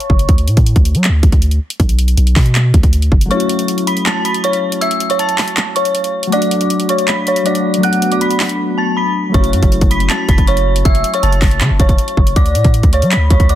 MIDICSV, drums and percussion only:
0, 0, Header, 1, 2, 480
1, 0, Start_track
1, 0, Key_signature, 3, "minor"
1, 0, Tempo, 377358
1, 365, Time_signature, 4, 2, 24, 8
1, 17238, End_track
2, 0, Start_track
2, 0, Title_t, "Drums"
2, 5, Note_on_c, 9, 42, 51
2, 125, Note_on_c, 9, 36, 95
2, 132, Note_off_c, 9, 42, 0
2, 245, Note_on_c, 9, 42, 73
2, 252, Note_off_c, 9, 36, 0
2, 365, Note_off_c, 9, 42, 0
2, 365, Note_on_c, 9, 36, 115
2, 365, Note_on_c, 9, 42, 74
2, 485, Note_off_c, 9, 42, 0
2, 485, Note_on_c, 9, 42, 66
2, 492, Note_off_c, 9, 36, 0
2, 605, Note_off_c, 9, 42, 0
2, 605, Note_on_c, 9, 42, 83
2, 725, Note_off_c, 9, 42, 0
2, 725, Note_on_c, 9, 42, 61
2, 726, Note_on_c, 9, 36, 95
2, 845, Note_off_c, 9, 42, 0
2, 845, Note_on_c, 9, 42, 85
2, 853, Note_off_c, 9, 36, 0
2, 965, Note_off_c, 9, 42, 0
2, 965, Note_on_c, 9, 36, 90
2, 965, Note_on_c, 9, 42, 55
2, 1085, Note_off_c, 9, 42, 0
2, 1085, Note_on_c, 9, 42, 79
2, 1092, Note_off_c, 9, 36, 0
2, 1205, Note_off_c, 9, 42, 0
2, 1205, Note_on_c, 9, 42, 53
2, 1324, Note_on_c, 9, 39, 118
2, 1325, Note_off_c, 9, 42, 0
2, 1325, Note_on_c, 9, 42, 66
2, 1451, Note_off_c, 9, 39, 0
2, 1452, Note_off_c, 9, 42, 0
2, 1565, Note_on_c, 9, 36, 98
2, 1565, Note_on_c, 9, 42, 74
2, 1684, Note_off_c, 9, 36, 0
2, 1684, Note_on_c, 9, 36, 88
2, 1685, Note_off_c, 9, 42, 0
2, 1685, Note_on_c, 9, 42, 61
2, 1805, Note_off_c, 9, 42, 0
2, 1805, Note_on_c, 9, 42, 70
2, 1811, Note_off_c, 9, 36, 0
2, 1925, Note_off_c, 9, 42, 0
2, 1925, Note_on_c, 9, 42, 51
2, 2052, Note_off_c, 9, 42, 0
2, 2166, Note_on_c, 9, 42, 76
2, 2285, Note_on_c, 9, 36, 112
2, 2286, Note_off_c, 9, 42, 0
2, 2286, Note_on_c, 9, 42, 74
2, 2406, Note_off_c, 9, 42, 0
2, 2406, Note_on_c, 9, 42, 67
2, 2413, Note_off_c, 9, 36, 0
2, 2526, Note_off_c, 9, 42, 0
2, 2526, Note_on_c, 9, 42, 81
2, 2646, Note_off_c, 9, 42, 0
2, 2646, Note_on_c, 9, 42, 61
2, 2766, Note_off_c, 9, 42, 0
2, 2766, Note_on_c, 9, 42, 84
2, 2886, Note_off_c, 9, 42, 0
2, 2886, Note_on_c, 9, 42, 55
2, 3005, Note_on_c, 9, 36, 100
2, 3005, Note_on_c, 9, 46, 89
2, 3006, Note_on_c, 9, 39, 100
2, 3013, Note_off_c, 9, 42, 0
2, 3125, Note_on_c, 9, 42, 54
2, 3132, Note_off_c, 9, 36, 0
2, 3133, Note_off_c, 9, 39, 0
2, 3133, Note_off_c, 9, 46, 0
2, 3245, Note_off_c, 9, 42, 0
2, 3245, Note_on_c, 9, 39, 118
2, 3245, Note_on_c, 9, 42, 66
2, 3372, Note_off_c, 9, 39, 0
2, 3372, Note_off_c, 9, 42, 0
2, 3485, Note_on_c, 9, 36, 95
2, 3485, Note_on_c, 9, 42, 73
2, 3604, Note_off_c, 9, 36, 0
2, 3604, Note_on_c, 9, 36, 86
2, 3605, Note_off_c, 9, 42, 0
2, 3605, Note_on_c, 9, 42, 58
2, 3725, Note_off_c, 9, 42, 0
2, 3725, Note_on_c, 9, 42, 72
2, 3731, Note_off_c, 9, 36, 0
2, 3846, Note_off_c, 9, 42, 0
2, 3846, Note_on_c, 9, 42, 54
2, 3965, Note_on_c, 9, 36, 95
2, 3973, Note_off_c, 9, 42, 0
2, 4086, Note_on_c, 9, 42, 75
2, 4092, Note_off_c, 9, 36, 0
2, 4206, Note_off_c, 9, 42, 0
2, 4206, Note_on_c, 9, 42, 46
2, 4325, Note_off_c, 9, 42, 0
2, 4325, Note_on_c, 9, 42, 67
2, 4445, Note_off_c, 9, 42, 0
2, 4445, Note_on_c, 9, 42, 80
2, 4565, Note_off_c, 9, 42, 0
2, 4565, Note_on_c, 9, 42, 60
2, 4685, Note_off_c, 9, 42, 0
2, 4685, Note_on_c, 9, 42, 88
2, 4806, Note_off_c, 9, 42, 0
2, 4806, Note_on_c, 9, 42, 56
2, 4926, Note_off_c, 9, 42, 0
2, 4926, Note_on_c, 9, 42, 83
2, 5046, Note_off_c, 9, 42, 0
2, 5046, Note_on_c, 9, 42, 54
2, 5165, Note_on_c, 9, 39, 117
2, 5166, Note_off_c, 9, 42, 0
2, 5166, Note_on_c, 9, 42, 65
2, 5292, Note_off_c, 9, 39, 0
2, 5293, Note_off_c, 9, 42, 0
2, 5406, Note_on_c, 9, 42, 73
2, 5526, Note_off_c, 9, 42, 0
2, 5526, Note_on_c, 9, 42, 59
2, 5646, Note_off_c, 9, 42, 0
2, 5646, Note_on_c, 9, 42, 69
2, 5766, Note_off_c, 9, 42, 0
2, 5766, Note_on_c, 9, 42, 53
2, 5893, Note_off_c, 9, 42, 0
2, 6006, Note_on_c, 9, 42, 75
2, 6125, Note_off_c, 9, 42, 0
2, 6125, Note_on_c, 9, 42, 75
2, 6245, Note_off_c, 9, 42, 0
2, 6245, Note_on_c, 9, 42, 66
2, 6365, Note_off_c, 9, 42, 0
2, 6365, Note_on_c, 9, 42, 80
2, 6485, Note_off_c, 9, 42, 0
2, 6485, Note_on_c, 9, 42, 58
2, 6605, Note_off_c, 9, 42, 0
2, 6605, Note_on_c, 9, 42, 84
2, 6725, Note_off_c, 9, 42, 0
2, 6725, Note_on_c, 9, 42, 57
2, 6845, Note_on_c, 9, 39, 98
2, 6845, Note_on_c, 9, 46, 86
2, 6852, Note_off_c, 9, 42, 0
2, 6965, Note_on_c, 9, 42, 56
2, 6972, Note_off_c, 9, 39, 0
2, 6972, Note_off_c, 9, 46, 0
2, 7084, Note_off_c, 9, 42, 0
2, 7084, Note_on_c, 9, 39, 117
2, 7084, Note_on_c, 9, 42, 65
2, 7211, Note_off_c, 9, 39, 0
2, 7212, Note_off_c, 9, 42, 0
2, 7324, Note_on_c, 9, 42, 74
2, 7444, Note_off_c, 9, 42, 0
2, 7444, Note_on_c, 9, 42, 59
2, 7564, Note_off_c, 9, 42, 0
2, 7564, Note_on_c, 9, 42, 72
2, 7684, Note_off_c, 9, 42, 0
2, 7684, Note_on_c, 9, 42, 51
2, 7811, Note_off_c, 9, 42, 0
2, 7924, Note_on_c, 9, 42, 75
2, 8044, Note_off_c, 9, 42, 0
2, 8044, Note_on_c, 9, 42, 77
2, 8164, Note_off_c, 9, 42, 0
2, 8164, Note_on_c, 9, 42, 66
2, 8285, Note_off_c, 9, 42, 0
2, 8285, Note_on_c, 9, 42, 82
2, 8405, Note_off_c, 9, 42, 0
2, 8405, Note_on_c, 9, 42, 61
2, 8525, Note_off_c, 9, 42, 0
2, 8525, Note_on_c, 9, 42, 86
2, 8645, Note_off_c, 9, 42, 0
2, 8645, Note_on_c, 9, 42, 55
2, 8764, Note_off_c, 9, 42, 0
2, 8764, Note_on_c, 9, 42, 83
2, 8885, Note_off_c, 9, 42, 0
2, 8885, Note_on_c, 9, 42, 54
2, 9003, Note_on_c, 9, 39, 117
2, 9004, Note_off_c, 9, 42, 0
2, 9004, Note_on_c, 9, 42, 67
2, 9131, Note_off_c, 9, 39, 0
2, 9131, Note_off_c, 9, 42, 0
2, 9245, Note_on_c, 9, 42, 73
2, 9364, Note_off_c, 9, 42, 0
2, 9364, Note_on_c, 9, 42, 61
2, 9484, Note_off_c, 9, 42, 0
2, 9484, Note_on_c, 9, 42, 71
2, 9604, Note_off_c, 9, 42, 0
2, 9604, Note_on_c, 9, 42, 55
2, 9731, Note_off_c, 9, 42, 0
2, 9844, Note_on_c, 9, 42, 76
2, 9964, Note_off_c, 9, 42, 0
2, 9964, Note_on_c, 9, 42, 75
2, 10083, Note_off_c, 9, 42, 0
2, 10083, Note_on_c, 9, 42, 67
2, 10203, Note_off_c, 9, 42, 0
2, 10203, Note_on_c, 9, 42, 81
2, 10324, Note_off_c, 9, 42, 0
2, 10324, Note_on_c, 9, 42, 61
2, 10445, Note_off_c, 9, 42, 0
2, 10445, Note_on_c, 9, 42, 85
2, 10564, Note_off_c, 9, 42, 0
2, 10564, Note_on_c, 9, 42, 55
2, 10684, Note_on_c, 9, 39, 99
2, 10684, Note_on_c, 9, 46, 90
2, 10692, Note_off_c, 9, 42, 0
2, 10804, Note_on_c, 9, 42, 54
2, 10812, Note_off_c, 9, 39, 0
2, 10812, Note_off_c, 9, 46, 0
2, 10931, Note_off_c, 9, 42, 0
2, 11885, Note_on_c, 9, 36, 112
2, 11885, Note_on_c, 9, 42, 47
2, 12004, Note_off_c, 9, 42, 0
2, 12004, Note_on_c, 9, 42, 67
2, 12012, Note_off_c, 9, 36, 0
2, 12124, Note_off_c, 9, 42, 0
2, 12124, Note_on_c, 9, 42, 80
2, 12244, Note_off_c, 9, 42, 0
2, 12244, Note_on_c, 9, 42, 62
2, 12245, Note_on_c, 9, 36, 97
2, 12363, Note_off_c, 9, 42, 0
2, 12363, Note_on_c, 9, 42, 86
2, 12372, Note_off_c, 9, 36, 0
2, 12483, Note_off_c, 9, 42, 0
2, 12483, Note_on_c, 9, 42, 52
2, 12485, Note_on_c, 9, 36, 93
2, 12604, Note_off_c, 9, 42, 0
2, 12604, Note_on_c, 9, 42, 82
2, 12612, Note_off_c, 9, 36, 0
2, 12723, Note_off_c, 9, 42, 0
2, 12723, Note_on_c, 9, 42, 53
2, 12843, Note_off_c, 9, 42, 0
2, 12843, Note_on_c, 9, 39, 116
2, 12843, Note_on_c, 9, 42, 65
2, 12970, Note_off_c, 9, 39, 0
2, 12970, Note_off_c, 9, 42, 0
2, 13084, Note_on_c, 9, 36, 96
2, 13084, Note_on_c, 9, 42, 73
2, 13203, Note_off_c, 9, 36, 0
2, 13203, Note_on_c, 9, 36, 88
2, 13204, Note_off_c, 9, 42, 0
2, 13204, Note_on_c, 9, 42, 61
2, 13324, Note_off_c, 9, 42, 0
2, 13324, Note_on_c, 9, 42, 69
2, 13330, Note_off_c, 9, 36, 0
2, 13444, Note_off_c, 9, 42, 0
2, 13444, Note_on_c, 9, 42, 53
2, 13571, Note_off_c, 9, 42, 0
2, 13684, Note_on_c, 9, 42, 75
2, 13804, Note_off_c, 9, 42, 0
2, 13804, Note_on_c, 9, 42, 73
2, 13805, Note_on_c, 9, 36, 115
2, 13925, Note_off_c, 9, 42, 0
2, 13925, Note_on_c, 9, 42, 66
2, 13932, Note_off_c, 9, 36, 0
2, 14045, Note_off_c, 9, 42, 0
2, 14045, Note_on_c, 9, 42, 81
2, 14165, Note_off_c, 9, 42, 0
2, 14165, Note_on_c, 9, 42, 59
2, 14285, Note_off_c, 9, 42, 0
2, 14285, Note_on_c, 9, 42, 88
2, 14405, Note_off_c, 9, 42, 0
2, 14405, Note_on_c, 9, 42, 53
2, 14524, Note_on_c, 9, 36, 97
2, 14525, Note_on_c, 9, 39, 101
2, 14525, Note_on_c, 9, 46, 88
2, 14532, Note_off_c, 9, 42, 0
2, 14644, Note_on_c, 9, 42, 52
2, 14652, Note_off_c, 9, 36, 0
2, 14652, Note_off_c, 9, 39, 0
2, 14652, Note_off_c, 9, 46, 0
2, 14764, Note_on_c, 9, 39, 116
2, 14765, Note_off_c, 9, 42, 0
2, 14765, Note_on_c, 9, 42, 67
2, 14891, Note_off_c, 9, 39, 0
2, 14892, Note_off_c, 9, 42, 0
2, 15004, Note_on_c, 9, 36, 98
2, 15004, Note_on_c, 9, 42, 73
2, 15123, Note_off_c, 9, 36, 0
2, 15123, Note_on_c, 9, 36, 92
2, 15124, Note_off_c, 9, 42, 0
2, 15124, Note_on_c, 9, 42, 59
2, 15244, Note_off_c, 9, 42, 0
2, 15244, Note_on_c, 9, 42, 72
2, 15250, Note_off_c, 9, 36, 0
2, 15364, Note_off_c, 9, 42, 0
2, 15364, Note_on_c, 9, 42, 53
2, 15484, Note_on_c, 9, 36, 94
2, 15491, Note_off_c, 9, 42, 0
2, 15604, Note_on_c, 9, 42, 73
2, 15612, Note_off_c, 9, 36, 0
2, 15724, Note_off_c, 9, 42, 0
2, 15724, Note_on_c, 9, 42, 74
2, 15725, Note_on_c, 9, 36, 112
2, 15844, Note_off_c, 9, 42, 0
2, 15844, Note_on_c, 9, 42, 66
2, 15852, Note_off_c, 9, 36, 0
2, 15964, Note_off_c, 9, 42, 0
2, 15964, Note_on_c, 9, 42, 81
2, 16084, Note_off_c, 9, 42, 0
2, 16084, Note_on_c, 9, 42, 61
2, 16085, Note_on_c, 9, 36, 95
2, 16204, Note_off_c, 9, 42, 0
2, 16204, Note_on_c, 9, 42, 84
2, 16213, Note_off_c, 9, 36, 0
2, 16324, Note_off_c, 9, 42, 0
2, 16324, Note_on_c, 9, 42, 55
2, 16325, Note_on_c, 9, 36, 89
2, 16444, Note_off_c, 9, 42, 0
2, 16444, Note_on_c, 9, 42, 79
2, 16452, Note_off_c, 9, 36, 0
2, 16563, Note_off_c, 9, 42, 0
2, 16563, Note_on_c, 9, 42, 56
2, 16682, Note_on_c, 9, 39, 118
2, 16683, Note_off_c, 9, 42, 0
2, 16683, Note_on_c, 9, 42, 68
2, 16810, Note_off_c, 9, 39, 0
2, 16810, Note_off_c, 9, 42, 0
2, 16923, Note_on_c, 9, 42, 75
2, 16924, Note_on_c, 9, 36, 97
2, 17043, Note_off_c, 9, 36, 0
2, 17043, Note_off_c, 9, 42, 0
2, 17043, Note_on_c, 9, 36, 91
2, 17043, Note_on_c, 9, 42, 59
2, 17163, Note_off_c, 9, 42, 0
2, 17163, Note_on_c, 9, 42, 72
2, 17170, Note_off_c, 9, 36, 0
2, 17238, Note_off_c, 9, 42, 0
2, 17238, End_track
0, 0, End_of_file